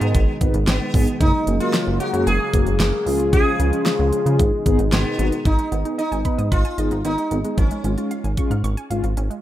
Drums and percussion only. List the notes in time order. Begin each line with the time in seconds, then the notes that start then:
0.01 closed hi-hat
0.15 kick, closed hi-hat
0.41 kick, closed hi-hat
0.54 closed hi-hat
0.67 snare, closed hi-hat
0.94 kick, open hi-hat
1.07 closed hi-hat
1.21 kick, closed hi-hat
1.47 closed hi-hat
1.60 closed hi-hat
1.74 snare, closed hi-hat
2.00 closed hi-hat
2.14 closed hi-hat
2.27 closed hi-hat
2.53 kick, closed hi-hat
2.66 closed hi-hat
2.80 snare, closed hi-hat
3.07 open hi-hat
3.20 closed hi-hat
3.33 kick, closed hi-hat
3.60 closed hi-hat
3.73 closed hi-hat
3.86 snare, closed hi-hat
4.13 closed hi-hat
4.26 closed hi-hat
4.39 kick, closed hi-hat
4.66 kick, closed hi-hat
4.79 closed hi-hat
4.92 snare, closed hi-hat
5.19 closed hi-hat
5.32 closed hi-hat
5.45 kick, closed hi-hat
5.59 closed hi-hat
5.72 closed hi-hat
5.85 closed hi-hat
5.99 closed hi-hat
6.12 closed hi-hat
6.25 kick, closed hi-hat
6.39 closed hi-hat
6.52 kick, closed hi-hat
6.65 closed hi-hat
6.78 closed hi-hat
6.91 closed hi-hat
7.05 closed hi-hat
7.18 closed hi-hat
7.31 closed hi-hat
7.44 closed hi-hat
7.58 kick, closed hi-hat
7.71 closed hi-hat
7.84 closed hi-hat
7.98 closed hi-hat
8.11 closed hi-hat
8.24 closed hi-hat
8.37 kick, closed hi-hat
8.51 closed hi-hat
8.64 closed hi-hat
8.77 closed hi-hat
8.91 closed hi-hat
9.04 closed hi-hat
9.17 closed hi-hat
9.31 closed hi-hat